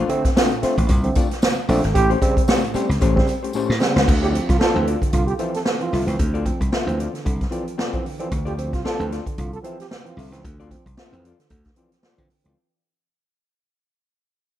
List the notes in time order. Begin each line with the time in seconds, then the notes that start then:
0.00 A3 F4 C5
0.09 D3 A3 C4, muted hollow-body jazz guitar stroke, closed hi-hat
0.24 A3 C4, muted slap bass stroke, muted hollow-body jazz guitar stroke, kick, snare, closed hi-hat
0.36 A3 C4 D4 F4 C5, snare, tambourine
0.51 A#2, muted hollow-body jazz guitar stroke, closed hi-hat
0.63 A3 C4 D4 F4 C5, muted slap bass stroke, snare, closed hi-hat, tambourine
0.78 A1, muted hollow-body jazz guitar stroke, kick, closed hi-hat
0.89 C2 A#2, muted hollow-body jazz guitar stroke, kick, closed hi-hat, tambourine
1.04 D3 A3 C4, closed hi-hat
1.15 A3 C4 D4 F4 D5, kick, closed hi-hat, tambourine
1.30 muted hollow-body jazz guitar stroke, snare, closed hi-hat
1.42 muted hollow-body jazz guitar stroke, snare, tambourine
1.69 A#1 D3 A3 C4 D4 F4 D5, open hi-hat, tambourine
1.83 G#1, muted hollow-body jazz guitar stroke, snare, closed hi-hat
1.94 A1 A2 G4, muted hollow-body jazz guitar stroke, kick, closed hi-hat
2.10 A3 C#4 G4 C5, closed hi-hat
2.21 C#3 G3 C4, kick, closed hi-hat
2.36 G3 C4, muted slap bass stroke, muted hollow-body jazz guitar stroke, kick, closed hi-hat
2.47 G3 A3 C4 C#4 G4 C#5, snare, tambourine
2.62 A2, muted hollow-body jazz guitar stroke, closed hi-hat
2.74 G3 A3 C4 C#4 G4 C5, muted slap bass stroke, closed hi-hat, tambourine
2.89 C#2, muted hollow-body jazz guitar stroke, snare, closed hi-hat
3.01 A1 A2 A3 C#4 G4 C5, kick, closed hi-hat, tambourine
3.15 C#3 G3 C4, kick, snare
3.27 G3 C4, muted hollow-body jazz guitar stroke, closed hi-hat, tambourine
3.43 A3 C#4 G4 C5, closed hi-hat
3.53 A2 A3 C#4 G4 C5, tambourine
3.69 A2, snare
3.80 C#3 G3 C4, muted hollow-body jazz guitar stroke, snare, tambourine
3.95 C#2 G3 A3 C4 C#4 G4 C5, snare
4.07 D2 D3, muted hollow-body jazz guitar stroke, kick, crash
4.21 C4 F4 G4 A4 D5, closed hi-hat
4.32 F3 C4, muted hollow-body jazz guitar stroke, closed hi-hat
4.48 C2 F4, muted hollow-body jazz guitar stroke, kick, snare, closed hi-hat
4.59 C4 F4 A4 D5, snare
4.74 D2 E3 F3 C4, muted hollow-body jazz guitar stroke
4.86 C4 F4 A4 D5, closed hi-hat
5.01 D3, muted hollow-body jazz guitar stroke, kick, closed hi-hat
5.11 C2 D3 F4, muted hollow-body jazz guitar stroke, kick, closed hi-hat
5.27 G4, closed hi-hat
5.39 E3 F3 C4 F4 A4 E5, closed hi-hat
5.54 F3 C4 A4, muted hollow-body jazz guitar stroke, snare, closed hi-hat
5.66 muted hollow-body jazz guitar stroke, snare
5.80 E3 F3 C4 F4, closed hi-hat
5.92 C2 D3 C4 F4 A4 E5, snare, open hi-hat
6.06 C#2 E3 F3 C4, muted hollow-body jazz guitar stroke, snare, closed hi-hat
6.18 D2 D3, muted hollow-body jazz guitar stroke, kick, closed hi-hat
6.34 C4 F4 A4 D5, closed hi-hat
6.45 F3 C4, muted hollow-body jazz guitar stroke, kick, closed hi-hat
6.60 C2, muted hollow-body jazz guitar stroke, kick, closed hi-hat
6.72 C4 F4 A4 E5, snare
6.87 D2 E3 F3 C4, muted hollow-body jazz guitar stroke, closed hi-hat
6.99 C4 F4 A4 D5, closed hi-hat
7.13 D3, muted hollow-body jazz guitar stroke, snare, closed hi-hat
7.25 C2 D3, muted hollow-body jazz guitar stroke, kick, closed hi-hat
7.41 kick, snare, closed hi-hat
7.51 E3 F3 C4 F4 A4 D5, closed hi-hat
7.67 F3 C4, closed hi-hat
7.78 C4 F4 A4 D5, snare
7.93 E3 F3 C4, kick, closed hi-hat
8.05 D3, muted hollow-body jazz guitar stroke, open hi-hat
8.19 E3 F3 C4 F4 A4 D5, closed hi-hat
8.31 D2 D3, muted hollow-body jazz guitar stroke, kick, closed hi-hat
8.45 C4 F4 G4 A4 D5, closed hi-hat
8.58 F3 C4, muted hollow-body jazz guitar stroke, closed hi-hat
8.73 C2 F4, muted hollow-body jazz guitar stroke, kick, snare, closed hi-hat
8.84 C4 F4 A4 D5, muted slap bass stroke, snare
8.99 D2 E3 F3 C4, muted hollow-body jazz guitar stroke, closed hi-hat
9.12 C4 F4 A4 D5, snare, closed hi-hat
9.26 D3, muted hollow-body jazz guitar stroke, kick, closed hi-hat
9.38 C2 D3 F4, muted hollow-body jazz guitar stroke, kick, closed hi-hat
9.53 A4, closed hi-hat
9.63 E3 F3 C4 F4 A4 E5, closed hi-hat
9.78 F3 C4 G4, muted hollow-body jazz guitar stroke, snare, closed hi-hat
9.91 muted hollow-body jazz guitar stroke, snare
10.05 E3 F3 C4 F4, closed hi-hat
10.17 C2 D3 C4 F4 A4 E5, open hi-hat
10.32 C#2 E3 F3 C4, muted hollow-body jazz guitar stroke, snare, closed hi-hat
10.44 D2 D3, muted hollow-body jazz guitar stroke, kick, closed hi-hat
10.60 C4 F4 A4 D5, closed hi-hat
10.70 F3 C4, muted hollow-body jazz guitar stroke, kick, closed hi-hat
10.86 C2, muted hollow-body jazz guitar stroke, kick, closed hi-hat
10.97 C4 F4 A4 E5, muted slap bass stroke, snare
11.12 F2 E3 F3 C4, muted hollow-body jazz guitar stroke, closed hi-hat
11.25 C4 F4 A4 D5, closed hi-hat
11.39 D3, muted hollow-body jazz guitar stroke, snare, closed hi-hat
11.50 D2 D3, muted hollow-body jazz guitar stroke, kick, closed hi-hat
11.65 kick, snare, closed hi-hat
11.76 E3 F3 C4 F4 A4 D5, closed hi-hat
11.92 F3 C4, muted hollow-body jazz guitar stroke, snare, closed hi-hat
12.03 C4 F4 A4 D5, snare
12.18 D3 E3 F3 C4, kick, closed hi-hat
12.30 D3, muted hollow-body jazz guitar stroke, open hi-hat
12.44 C#2 E3 F3 C4 F4 A4 D5, closed hi-hat